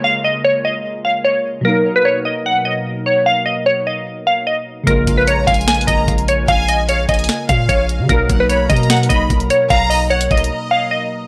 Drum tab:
HH |------------------------------------------------------------------------------------------------|------------------------------------------------------------------------------------------------|------------------------------------------------------------------------------------------------|x-----------x-----------x-----------x---x---x---x---x---x---x-----------x-----x-----x-----------|
SD |------------------------------------------------------------------------------------------------|------------------------------------------------------------------------------------------------|------------------------------------------------------------------------------------------------|------------------------------------------------o-----------------------------------------------|
BD |------------------------------------------------------------------------------------------------|------------------------------------------------------------------------------------------------|------------------------------------------------------------------------------------------------|o-----------o-----------------------o-----------------------o-----------o-----------------------|

HH |x-----------x-----------x-----------x--x--x--x--x-----------x-----------x-----------x-----------|x-----------x-----------x-----------x---x---x---x---x---x---x-----------x-----x-----x-----------|x-----------o-----------x-----x-----x---x---x---------------------------------------------------|
SD |------------------------------------------------o-----------------------------------------------|------------------------------------------------o-----------------------------------------------|------------------------------------------------------------------------------------------------|
BD |o-----------------------------------o-----------------------o-----------o-----------------------|o-----------o-----------------------o-----------------------o-----------o-----------------------|o-----------------------------------o-----------------------------------------------------------|